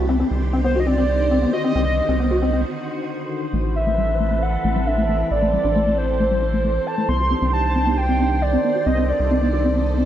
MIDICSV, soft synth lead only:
0, 0, Header, 1, 2, 480
1, 0, Start_track
1, 0, Tempo, 444444
1, 1894, Time_signature, 4, 2, 24, 8
1, 10856, End_track
2, 0, Start_track
2, 0, Title_t, "Soft synth lead"
2, 0, Program_c, 0, 80
2, 695, Note_on_c, 0, 72, 98
2, 848, Note_off_c, 0, 72, 0
2, 861, Note_on_c, 0, 75, 76
2, 935, Note_on_c, 0, 74, 111
2, 952, Note_off_c, 0, 75, 0
2, 1648, Note_off_c, 0, 74, 0
2, 1655, Note_on_c, 0, 75, 110
2, 2811, Note_off_c, 0, 75, 0
2, 4058, Note_on_c, 0, 76, 95
2, 4778, Note_on_c, 0, 78, 101
2, 4794, Note_off_c, 0, 76, 0
2, 5258, Note_on_c, 0, 76, 98
2, 5274, Note_off_c, 0, 78, 0
2, 5738, Note_on_c, 0, 74, 102
2, 5754, Note_off_c, 0, 76, 0
2, 6451, Note_off_c, 0, 74, 0
2, 6457, Note_on_c, 0, 72, 101
2, 7417, Note_on_c, 0, 81, 105
2, 7433, Note_off_c, 0, 72, 0
2, 7649, Note_off_c, 0, 81, 0
2, 7655, Note_on_c, 0, 84, 118
2, 8101, Note_off_c, 0, 84, 0
2, 8135, Note_on_c, 0, 81, 112
2, 8614, Note_on_c, 0, 79, 105
2, 8630, Note_off_c, 0, 81, 0
2, 9094, Note_on_c, 0, 74, 97
2, 9110, Note_off_c, 0, 79, 0
2, 9567, Note_off_c, 0, 74, 0
2, 9574, Note_on_c, 0, 75, 99
2, 9815, Note_on_c, 0, 74, 96
2, 9831, Note_off_c, 0, 75, 0
2, 10856, Note_off_c, 0, 74, 0
2, 10856, End_track
0, 0, End_of_file